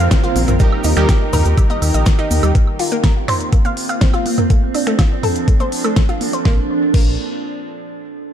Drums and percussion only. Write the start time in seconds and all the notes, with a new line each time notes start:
0.11 kick, snare, closed hi-hat, cabasa, high woodblock
0.24 closed hi-hat
0.36 open hi-hat, high conga, cabasa
0.48 closed hi-hat, mid tom, cabasa, high woodblock
0.60 kick, closed hi-hat, cabasa
0.72 high woodblock
0.84 open hi-hat, cabasa
0.97 finger snap, closed hi-hat, cabasa, high woodblock
1.09 kick, snare, closed hi-hat, high conga, cabasa
1.33 mid tom, open hi-hat, cabasa, high woodblock
1.45 closed hi-hat, cabasa
1.58 kick, closed hi-hat, cabasa, high woodblock
1.70 closed hi-hat, high conga
1.82 open hi-hat, cabasa, high woodblock
1.94 closed hi-hat, cabasa
2.06 kick, snare, closed hi-hat, cabasa
2.19 closed hi-hat, high woodblock
2.31 open hi-hat, high conga, cabasa
2.43 closed hi-hat, cabasa, high woodblock
2.55 kick, closed hi-hat
2.67 high woodblock
2.79 open hi-hat
2.92 closed hi-hat
3.04 kick, snare, closed hi-hat, high conga, high woodblock
3.28 finger snap, mid tom, open hi-hat, high woodblock
3.40 closed hi-hat
3.52 kick, closed hi-hat, high woodblock
3.65 closed hi-hat, high conga
3.77 open hi-hat
3.89 closed hi-hat, high woodblock
4.01 kick, snare, closed hi-hat
4.14 closed hi-hat, high woodblock
4.26 open hi-hat, high conga
4.38 closed hi-hat, mid tom, high woodblock
4.50 kick, closed hi-hat
4.74 open hi-hat, high woodblock
4.87 finger snap, closed hi-hat
4.99 kick, snare, closed hi-hat, high conga, high woodblock
5.23 mid tom, open hi-hat, high woodblock
5.36 closed hi-hat
5.48 kick, closed hi-hat
5.60 closed hi-hat, high conga, high woodblock
5.72 open hi-hat
5.84 closed hi-hat, high woodblock
5.96 kick, snare, closed hi-hat
6.09 closed hi-hat, high woodblock
6.21 open hi-hat, high conga
6.33 closed hi-hat
6.45 kick, snare
6.94 kick, crash